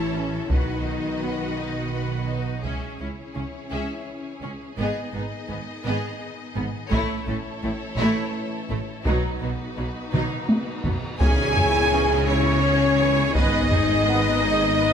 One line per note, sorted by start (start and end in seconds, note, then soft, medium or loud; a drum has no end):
0.00 0.47 A1 medium
0.00 0.50 E3 medium
0.00 0.50 C#4 medium
0.00 0.12 E4 soft
0.00 0.48 E4 medium
0.00 0.50 E4 medium
0.00 0.50 A4 medium
0.00 0.12 C#5 soft
0.00 0.50 C#5 medium
0.00 0.13 A5 soft
0.14 0.28 E3 soft
0.14 0.50 C#4 soft
0.14 0.28 C#4 medium
0.14 0.50 A4 soft
0.14 0.50 E5 soft
0.50 2.41 B1 soft
0.50 2.25 D#3 soft
0.50 2.65 B3 medium
0.50 2.28 D#4 medium
0.50 2.64 F#4 medium
0.50 0.84 F#4 soft
0.50 0.83 B4 soft
0.50 2.65 B4 medium
0.50 2.64 D#5 medium
0.50 0.84 F#5 soft
0.50 taiko medium
0.85 1.22 D#4 soft
0.85 1.22 F#4 soft
0.85 1.21 D#5 soft
1.22 1.34 F#3 soft
1.22 1.34 B3 medium
1.22 1.58 F#4 soft
1.22 1.57 B4 soft
1.22 1.58 F#5 soft
1.57 1.93 D#4 soft
1.57 1.93 F#4 soft
1.57 1.93 D#5 soft
1.92 2.27 F#4 soft
1.92 2.27 B4 soft
1.92 2.25 F#5 soft
2.28 2.41 F#3 soft
2.28 2.41 B3 soft
2.28 2.65 D#4 soft
2.28 2.64 F#4 soft
2.28 2.64 D#5 soft
2.63 2.72 C#2 soft
2.63 4.75 E3 soft
2.63 4.74 C#4 soft
2.63 2.98 C#4 soft
2.63 4.74 E4 soft
2.63 2.97 G#4 soft
2.63 6.89 G#4 soft
2.63 4.74 C#5 soft
2.63 2.98 E5 soft
2.63 taiko soft
2.99 3.07 C#2 soft
2.99 3.08 C#2 soft
2.99 3.08 C#4 soft
2.99 3.09 E4 soft
2.99 3.08 C#5 soft
3.34 3.43 C#2 soft
3.34 3.44 C#2 soft
3.34 3.43 C#4 soft
3.34 3.44 C#4 soft
3.34 3.42 G#4 soft
3.70 3.79 C#2 soft
3.70 3.80 C#2 soft
3.70 4.04 C#4 soft
3.70 4.04 G#4 soft
3.70 4.05 E5 soft
4.41 4.49 C#2 soft
4.41 4.51 C#2 soft
4.41 4.50 C#4 soft
4.41 4.51 C#4 soft
4.41 4.50 G#4 soft
4.77 4.86 G#1 soft
4.77 4.85 G#2 soft
4.77 6.88 D#3 soft
4.77 6.88 B3 soft
4.77 5.11 B3 soft
4.77 6.93 B3 soft
4.77 6.93 D#4 soft
4.77 5.12 G#4 soft
4.77 6.92 D#5 soft
4.77 5.12 D#5 soft
5.13 5.22 G#1 soft
5.13 5.21 G#2 soft
5.13 5.22 B3 soft
5.13 5.22 D#4 soft
5.13 5.23 B4 soft
5.48 5.58 G#1 soft
5.48 5.56 G#2 soft
5.48 5.57 B3 soft
5.48 5.59 B3 soft
5.48 5.57 G#4 soft
5.84 5.94 G#1 soft
5.84 5.92 G#2 medium
5.84 6.19 B3 soft
5.84 6.19 G#4 soft
5.84 6.18 D#5 medium
6.55 6.65 G#1 soft
6.55 6.64 G#2 soft
6.55 6.64 B3 soft
6.55 6.65 B3 medium
6.55 6.63 G#4 soft
6.90 7.00 A1 medium
6.90 6.98 A2 medium
6.90 9.03 E3 medium
6.90 9.06 A3 medium
6.90 7.25 A3 medium
6.90 9.03 C#4 medium
6.90 9.06 E4 medium
6.90 7.25 E4 medium
6.90 9.06 A4 medium
6.90 7.24 C#5 medium
6.90 9.06 C#5 medium
6.90 taiko medium
7.27 7.36 A1 soft
7.27 7.35 A2 soft
7.27 7.36 A3 soft
7.27 7.36 C#4 soft
7.27 7.35 A4 soft
7.63 7.72 A1 soft
7.63 7.71 A2 medium
7.63 7.71 A3 soft
7.63 7.72 E4 soft
7.98 8.07 A1 medium
7.98 8.06 A2 medium
7.98 8.32 A3 medium
7.98 8.32 E4 medium
7.98 8.33 C#5 medium
8.69 8.79 A1 soft
8.69 8.78 A2 soft
8.69 8.77 A3 soft
8.69 8.79 A3 soft
8.69 8.78 E4 soft
9.05 9.14 B1 soft
9.05 9.14 B2 soft
9.05 9.40 F#3 medium
9.05 10.85 F#3 medium
9.05 11.21 B3 medium
9.05 9.39 D#4 soft
9.05 11.21 D#4 medium
9.05 10.85 D#4 medium
9.05 11.21 F#4 soft
9.05 9.39 B4 soft
9.05 11.21 B4 medium
9.05 taiko medium
9.41 9.50 B1 soft
9.41 9.50 B2 soft
9.41 9.50 F#3 soft
9.41 9.50 B3 soft
9.41 9.49 F#4 soft
9.77 9.86 B1 soft
9.77 9.86 B2 soft
9.77 9.86 F#3 soft
9.77 9.85 B3 soft
9.77 9.85 D#4 soft
10.13 10.22 B1 soft
10.13 10.21 B2 soft
10.13 10.47 F#3 soft
10.13 10.47 D#4 soft
10.13 10.47 B4 soft
10.13 taiko mid medium
10.49 taiko high medium
10.84 10.94 B1 soft
10.84 10.93 B2 soft
10.84 10.93 F#3 soft
10.84 10.93 B3 soft
10.84 10.93 D#4 soft
10.84 taiko low medium
11.20 13.31 C#2 medium
11.20 13.31 C#3 medium
11.20 13.31 G#3 medium
11.20 11.54 C#4 medium
11.20 13.31 E4 medium
11.20 14.93 G#4 medium
11.20 12.24 G#4 loud
11.20 11.54 G#4 medium
11.20 13.31 C#5 medium
11.20 12.23 G#5 medium
11.20 12.24 G#5 medium
11.20 12.24 G#5 loud
11.20 taiko loud
11.20 tam-tam medium
11.56 11.92 E4 medium
11.56 11.92 C#5 medium
11.56 taiko low medium
11.92 12.04 E3 medium
11.92 12.04 C#4 medium
11.92 12.28 C#4 medium
11.92 12.28 G#4 medium
12.27 13.35 C#4 loud
12.27 12.63 E4 medium
12.27 13.35 C#5 loud
12.27 12.64 C#5 medium
12.27 13.33 C#5 medium
12.27 13.35 C#5 medium
12.63 12.97 C#4 medium
12.63 12.96 G#4 medium
12.99 13.12 E3 medium
12.99 13.12 C#4 medium
12.99 13.35 E4 medium
12.99 13.35 C#5 medium
13.34 14.93 G#1 medium
13.34 14.93 G#2 medium
13.34 14.93 B3 medium
13.34 13.68 B3 medium
13.34 14.93 D#4 loud
13.34 14.93 D#4 medium
13.34 13.68 B4 medium
13.34 14.93 D#5 medium
13.34 14.93 D#5 loud
13.34 14.93 D#5 medium
13.34 taiko loud
13.71 14.07 D#4 medium
13.71 14.07 G#4 medium
13.71 taiko low medium
14.06 14.20 D#3 medium
14.06 14.42 B3 medium
14.06 14.20 B3 medium
14.06 14.42 B4 medium
14.42 14.78 D#4 medium
14.42 14.78 G#4 medium
14.77 14.93 B3 medium
14.77 14.93 B4 medium